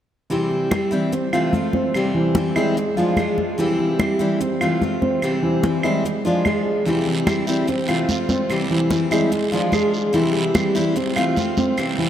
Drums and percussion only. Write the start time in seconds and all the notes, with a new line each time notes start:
0.30 high conga
0.51 high conga
0.71 high conga, claves
0.92 high conga
1.12 high conga
1.33 high conga, claves
1.53 high conga
1.73 high conga
1.94 high conga, claves
2.14 high conga
2.35 high conga
2.56 high conga, claves
2.76 high conga
2.96 high conga
3.17 high conga, claves
3.38 high conga
3.59 high conga
3.79 high conga
3.99 high conga, claves
4.20 high conga
4.41 high conga
4.61 high conga, claves
4.82 high conga
5.02 high conga
5.22 high conga, claves
5.43 high conga
5.63 high conga
5.83 high conga, claves
6.05 high conga
6.25 high conga
6.45 high conga, claves
6.86 high conga, long guiro
7.07 high conga
7.27 high conga, short guiro, claves
7.47 high conga, short guiro
7.68 high conga, long guiro
7.89 high conga, claves
8.09 high conga, short guiro
8.29 high conga, short guiro
8.50 high conga, long guiro, claves
8.70 high conga
8.91 high conga, short guiro
9.11 high conga, short guiro, claves
9.32 high conga, long guiro
9.52 high conga
9.72 high conga, short guiro, claves
9.94 short guiro
10.14 high conga, long guiro
10.34 high conga
10.54 high conga, short guiro, claves
10.75 high conga, short guiro
10.96 high conga, long guiro
11.16 high conga, claves
11.36 high conga, short guiro
11.57 high conga, short guiro
11.78 high conga, long guiro, claves
11.98 high conga